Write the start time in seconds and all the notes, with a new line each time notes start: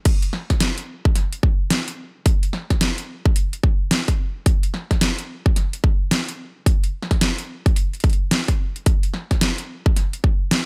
0.05 kick, closed hi-hat, crash
0.22 closed hi-hat
0.33 snare
0.50 kick, snare, closed hi-hat
0.60 snare, closed hi-hat
0.78 closed hi-hat
1.05 kick
1.15 snare, closed hi-hat
1.33 closed hi-hat
1.43 kick
1.70 snare, closed hi-hat
1.88 closed hi-hat
2.26 kick, closed hi-hat
2.43 closed hi-hat
2.53 snare
2.70 kick, snare, closed hi-hat
2.81 snare, closed hi-hat
2.98 closed hi-hat
3.26 kick
3.36 closed hi-hat
3.53 closed hi-hat
3.63 kick
3.91 snare, closed hi-hat
4.08 kick, closed hi-hat
4.46 kick, closed hi-hat
4.63 closed hi-hat
4.74 snare
4.91 kick, snare, closed hi-hat
5.01 snare, closed hi-hat
5.18 closed hi-hat
5.46 kick
5.56 snare, closed hi-hat
5.73 closed hi-hat
5.84 kick
6.11 snare, closed hi-hat
6.29 closed hi-hat
6.66 kick, closed hi-hat
6.84 closed hi-hat
7.02 snare
7.11 kick, snare, closed hi-hat
7.21 snare, closed hi-hat
7.38 closed hi-hat
7.66 kick, closed hi-hat
7.76 closed hi-hat
7.93 closed hi-hat
8.00 closed hi-hat
8.04 kick, closed hi-hat
8.10 closed hi-hat
8.13 closed hi-hat
8.31 snare, closed hi-hat
8.48 kick, closed hi-hat
8.76 closed hi-hat
8.86 kick, closed hi-hat
9.03 closed hi-hat
9.14 snare
9.31 kick, snare, closed hi-hat
9.41 snare, closed hi-hat
9.58 closed hi-hat
9.86 kick
9.96 snare, closed hi-hat
10.13 closed hi-hat
10.24 kick
10.51 snare, closed hi-hat